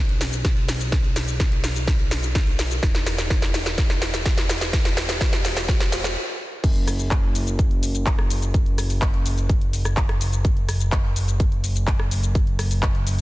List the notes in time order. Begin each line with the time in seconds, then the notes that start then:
Already playing: B1
0.09 closed hi-hat
0.21 snare, open hi-hat, shaker
0.33 closed hi-hat, shaker
0.45 kick, snare, closed hi-hat, shaker
0.57 closed hi-hat
0.69 snare, open hi-hat, shaker
0.80 closed hi-hat, shaker
0.92 kick, snare, closed hi-hat, shaker
1.04 closed hi-hat
1.16 snare, open hi-hat, shaker
1.28 closed hi-hat, shaker
1.40 kick, snare, closed hi-hat, shaker
1.52 closed hi-hat
1.64 snare, open hi-hat, shaker
1.76 closed hi-hat, shaker
1.88 kick, snare, closed hi-hat, shaker
1.99 closed hi-hat
2.11 snare, open hi-hat, shaker
2.23 closed hi-hat, shaker
2.35 kick, snare, closed hi-hat, shaker
2.47 closed hi-hat
2.59 snare, open hi-hat, shaker
2.71 closed hi-hat, shaker
2.83 E1, kick, snare, closed hi-hat, shaker
2.95 snare, closed hi-hat
3.07 snare, open hi-hat, shaker
3.18 snare, closed hi-hat, shaker
3.30 kick, snare, closed hi-hat, shaker
3.42 snare, closed hi-hat
3.54 snare, open hi-hat, shaker
3.66 snare, closed hi-hat, shaker
3.78 kick, snare, closed hi-hat, shaker
3.90 snare, closed hi-hat
4.02 snare, open hi-hat, shaker
4.14 snare, closed hi-hat, shaker
4.26 kick, snare, closed hi-hat, shaker
4.38 snare, closed hi-hat
4.49 snare, open hi-hat, shaker
4.61 snare, closed hi-hat, shaker
4.73 kick, snare, closed hi-hat, shaker
4.85 snare, closed hi-hat
4.97 snare, open hi-hat, shaker
5.09 snare, open hi-hat, shaker
5.21 kick, snare, closed hi-hat, shaker
5.33 snare, closed hi-hat
5.45 snare, open hi-hat, shaker
5.57 snare, closed hi-hat, shaker
5.68 kick, snare, closed hi-hat, shaker
5.80 snare, closed hi-hat
5.92 snare, open hi-hat, shaker
6.04 snare, closed hi-hat, shaker
6.64 F#1, kick, closed hi-hat, crash, shaker
6.76 closed hi-hat
6.88 cross-stick, open hi-hat, shaker
6.99 closed hi-hat, shaker
7.11 kick, clap, closed hi-hat, shaker
7.35 open hi-hat, shaker
7.47 closed hi-hat, shaker
7.59 kick, closed hi-hat, shaker
7.71 closed hi-hat
7.83 open hi-hat, shaker
7.95 closed hi-hat, shaker
8.06 kick, clap, closed hi-hat, shaker
8.19 cross-stick
8.30 open hi-hat, shaker
8.42 closed hi-hat, shaker
8.54 kick, closed hi-hat, shaker
8.66 closed hi-hat
8.78 cross-stick, open hi-hat, shaker
8.90 open hi-hat, shaker
9.02 kick, clap, closed hi-hat, shaker
9.14 closed hi-hat
9.26 open hi-hat, shaker
9.38 closed hi-hat, shaker
9.49 kick, closed hi-hat, shaker
9.61 closed hi-hat
9.73 open hi-hat, shaker
9.85 cross-stick, closed hi-hat, shaker
9.97 kick, clap, closed hi-hat, shaker
10.09 cross-stick, closed hi-hat
10.21 open hi-hat, shaker
10.33 closed hi-hat, shaker
10.45 kick, closed hi-hat, shaker
10.57 closed hi-hat
10.69 cross-stick, open hi-hat, shaker
10.80 closed hi-hat, shaker
10.92 kick, clap, closed hi-hat, shaker
11.16 open hi-hat, shaker
11.28 closed hi-hat, shaker
11.40 kick, closed hi-hat, shaker
11.52 closed hi-hat
11.64 open hi-hat, shaker
11.76 closed hi-hat, shaker
11.87 kick, clap, closed hi-hat, shaker
11.99 cross-stick
12.11 open hi-hat, shaker
12.23 closed hi-hat, shaker
12.35 kick, closed hi-hat, shaker
12.47 closed hi-hat
12.59 cross-stick, open hi-hat, shaker
12.71 open hi-hat, shaker
12.83 kick, clap, closed hi-hat, shaker
12.95 closed hi-hat
13.07 open hi-hat, shaker